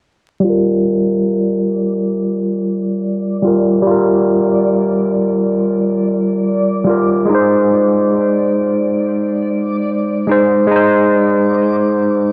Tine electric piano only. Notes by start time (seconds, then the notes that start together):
0.40 G3
0.44 F4
0.50 A#4
3.42 G3 F4
3.47 A#4
3.82 G3
3.87 F4
3.91 A#4
6.84 G3 F4
6.89 A#4
7.25 G#3
7.30 D#4
7.35 C5
10.27 G#3 D#4
10.32 C5
10.67 G#3
10.71 D#4
10.76 C5